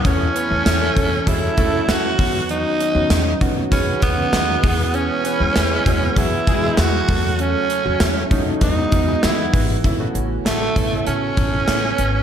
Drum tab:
HH |xxxxxxxo|xxxxxxxo|xxxxxxxo|xxxxxxxo|
TB |--x---x-|--x---x-|--x---x-|--x---x-|
SD |--o---o-|--o---o-|--o---o-|--o---o-|
BD |o--ooo-o|---ooo-o|---ooo-o|---ooo-o|

HH |xxxxxxxx|
TB |--------|
SD |--o---o-|
BD |o--o-o--|